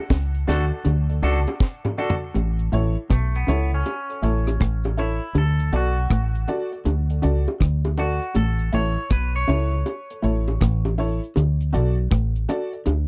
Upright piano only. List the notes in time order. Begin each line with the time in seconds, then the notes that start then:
0.47 F#4 A4 D5
0.72 A4 D5
1.09 A4 D5
1.22 F#4 A4 D5
1.84 A4 D5
1.97 F#4 A4 D5
2.73 E4 A4 C#5
3.48 E4 A4 C#5
3.73 A4 C#5
4.10 A4 C#5
4.22 E4 A4 C#5
4.97 E4 A4 C#5
5.72 F#4 A4 D5
6.48 F#4 A4 D5
6.72 A4 D5
7.10 A4 D5
7.22 F#4 A4 D5
7.97 F#4 A4 D5
8.72 E4 A4 C#5
9.48 E4 A4 C#5
9.72 A4 C#5
10.11 A4 C#5
10.22 E4 A4 C#5
10.98 E4 A4 C#5
11.73 F#4 A4 D5
12.48 F#4 A4 D5
12.73 A4 D5